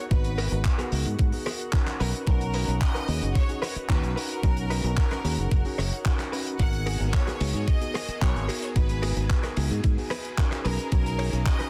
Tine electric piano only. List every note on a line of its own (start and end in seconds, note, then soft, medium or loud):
0.11 0.48 B3 loud
0.11 0.48 D#4 medium
0.11 0.48 F#4 medium
0.11 0.49 B4 loud
0.51 0.89 B3 medium
0.51 0.89 D#4 medium
0.51 0.89 F#4 medium
0.51 0.89 B4 medium
0.92 1.29 B3 medium
0.92 1.29 D#4 medium
0.92 1.30 F#4 medium
0.92 1.30 G#4 medium
1.32 1.47 B3 medium
1.32 1.47 D#4 medium
1.32 1.48 F#4 medium
1.32 1.48 G#4 medium
1.73 2.24 C#4 medium
1.73 2.24 D#4 medium
1.73 2.24 F#4 medium
1.73 2.24 A#4 loud
2.27 2.64 C#4 loud
2.27 2.65 D#4 medium
2.27 2.65 F#4 medium
2.27 2.65 A#5 loud
2.67 3.05 C#4 medium
2.67 3.05 D#4 medium
2.67 3.05 F#4 medium
2.67 3.05 A#5 medium
3.08 3.46 C#4 medium
3.08 3.46 D#4 medium
3.08 3.46 F#4 medium
3.08 3.46 G#4 medium
3.49 3.64 C#4 medium
3.49 3.64 D#4 medium
3.49 3.64 F#4 medium
3.49 3.64 G#4 medium
3.89 4.40 C#4 medium
3.89 4.40 D#4 medium
3.89 4.40 F#4 medium
3.89 4.40 A#5 medium
4.43 4.81 C#4 loud
4.43 4.81 D#4 medium
4.43 4.81 F#4 medium
4.43 4.81 A#5 loud
4.83 5.21 C#4 medium
4.83 5.21 D#4 medium
4.83 5.21 F#4 medium
4.83 5.22 A#5 medium
5.24 5.62 C#4 medium
5.24 5.62 D#4 medium
5.24 5.62 F#4 medium
5.24 5.62 G#4 medium
5.65 5.80 C#4 medium
5.65 5.80 D#4 medium
5.65 5.80 F#4 medium
5.65 5.80 G#4 medium
6.05 6.56 C#4 medium
6.05 6.56 D#4 medium
6.05 6.57 F#4 medium
6.05 6.57 A#4 medium
6.59 6.97 B3 medium
6.59 6.97 D#4 medium
6.59 6.97 F#4 medium
6.59 6.97 A#4 loud
7.00 7.37 B3 medium
7.00 7.37 D#4 medium
7.00 7.38 F#4 medium
7.00 7.38 A#4 medium
7.40 7.78 B3 medium
7.40 7.78 D#4 medium
7.40 7.78 F#4 medium
7.40 7.78 G#4 medium
7.81 7.96 B3 medium
7.81 7.96 D#4 medium
7.81 7.96 F#4 medium
7.81 7.97 G#4 medium
8.22 8.72 B3 medium
8.22 8.73 D#4 medium
8.22 8.73 F#4 medium
8.22 8.73 A#4 loud
8.76 9.13 B3 loud
8.76 9.13 D#4 medium
8.76 9.13 F#4 medium
8.76 9.14 B4 loud
9.16 9.54 B3 medium
9.16 9.54 D#4 medium
9.16 9.54 F#4 medium
9.16 9.54 B4 medium
9.57 9.94 B3 medium
9.57 9.94 D#4 medium
9.57 9.95 F#4 medium
9.57 9.95 G#4 medium
9.97 10.12 B3 medium
9.97 10.12 D#4 medium
9.97 10.13 F#4 medium
9.97 10.13 G#4 medium
10.38 10.89 C#4 medium
10.38 10.89 D#4 medium
10.38 10.89 F#4 medium
10.38 10.89 A#4 loud
10.92 11.29 C#4 medium
10.92 11.29 D#4 medium
10.92 11.30 F#4 medium
10.92 11.30 A#5 loud
11.32 11.70 C#4 medium
11.32 11.70 D#4 medium
11.32 11.70 F#4 medium
11.32 11.70 A#5 medium